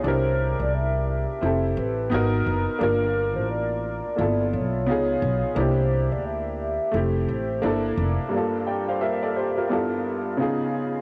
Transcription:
0.04 upright bass C2, upright piano D4 E4 G4, soft synth lead C5
0.08 upright piano A#4
0.59 upright bass C2, soft synth lead D5
0.74 soft synth lead E5
1.09 soft synth lead E5
1.41 upright bass F1, upright piano C4 E4 G4
1.46 upright piano A4
1.77 upright bass A1, soft synth lead B4
2.10 upright bass G#1, upright piano B3 D#4 F#4
2.14 upright piano A#4
2.46 upright bass F#1
2.79 upright bass G1, upright piano A#3 D4 F4, soft synth lead A#4
2.83 upright piano A#4
3.36 upright bass A1, soft synth lead C5
3.51 soft synth lead D5
3.84 soft synth lead D5
4.16 upright bass G1, upright piano A#3 E4 F4
4.21 upright piano B3 A4
4.53 upright bass B1, soft synth lead C#5
4.86 upright bass C#2, upright piano B3 D#4 F4
4.91 upright piano G#4
5.22 upright bass B1
5.55 upright bass C2, upright piano A#3 D4 E4, soft synth lead C5
5.60 upright piano G4
6.12 upright bass D2, soft synth lead D5
6.26 soft synth lead E5
6.61 soft synth lead E5
6.92 upright bass F1, upright piano A3 C4 E4
6.97 upright piano G4
7.28 upright bass A1, soft synth lead C5
7.62 upright bass G1, upright piano A#3 D4 E4
7.66 upright piano A4
7.97 upright bass F1
8.29 upright piano G2 A#3
8.33 upright piano D4 F4
8.38 upright piano A4
8.67 upright piano D5 G5
8.89 upright piano C5 F5
9.01 upright piano A#4 E5
9.23 upright piano A4 D5
9.36 upright piano G4 C5
9.58 upright piano F4 A#4
9.68 upright piano G2 B3 D4 E4 F4
9.73 upright piano A4
10.37 upright piano C#3 B3 D#4 F4
10.42 upright piano G#4

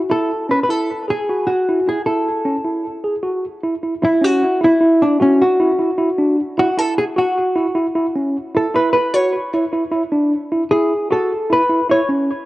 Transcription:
Already playing: hollow-body jazz guitar F#4
0.10 tine electric piano E4, hollow-body jazz guitar A4
0.49 tine electric piano C#4, hollow-body jazz guitar B4
0.63 hollow-body jazz guitar B4
0.69 tine electric piano E4, hollow-body jazz guitar A4
1.08 tine electric piano G#4, hollow-body jazz guitar G#4
1.29 tine electric piano F#4
1.47 hollow-body jazz guitar F#4
1.69 tine electric piano E4
1.88 tine electric piano E4, hollow-body jazz guitar G#4
2.06 tine electric piano E4, hollow-body jazz guitar A4
2.45 tine electric piano C#4
2.64 tine electric piano E4
3.04 tine electric piano G#4
3.23 tine electric piano F#4
3.64 tine electric piano E4
3.83 tine electric piano E4
4.02 tine electric piano E4, hollow-body jazz guitar E4
4.21 tine electric piano C#4, hollow-body jazz guitar F#4
4.61 tine electric piano E4, hollow-body jazz guitar E4
4.81 tine electric piano E4
5.02 hollow-body jazz guitar D4
5.20 hollow-body jazz guitar C#4, tine electric piano F#4
5.42 hollow-body jazz guitar F#4
5.60 tine electric piano E4
5.79 tine electric piano E4
5.98 tine electric piano E4
6.18 tine electric piano D4
6.58 tine electric piano E4, hollow-body jazz guitar F#4
6.78 tine electric piano E4, hollow-body jazz guitar A4
6.98 hollow-body jazz guitar G#4
7.16 tine electric piano F#4, hollow-body jazz guitar F#4
7.56 tine electric piano E4
7.75 tine electric piano E4
7.95 tine electric piano E4
8.16 tine electric piano C#4
8.55 tine electric piano E4, hollow-body jazz guitar A4
8.75 tine electric piano E4, hollow-body jazz guitar B4
8.93 hollow-body jazz guitar B4
9.14 tine electric piano F#4, hollow-body jazz guitar C#5
9.54 tine electric piano E4
9.73 tine electric piano E4
9.91 tine electric piano E4
10.12 tine electric piano D4
10.52 tine electric piano E4
10.71 tine electric piano E4, hollow-body jazz guitar G#4
11.11 tine electric piano F#4, hollow-body jazz guitar A4
11.50 tine electric piano E4, hollow-body jazz guitar B4
11.69 tine electric piano E4
11.89 tine electric piano E4, hollow-body jazz guitar C#5
12.09 tine electric piano C#4

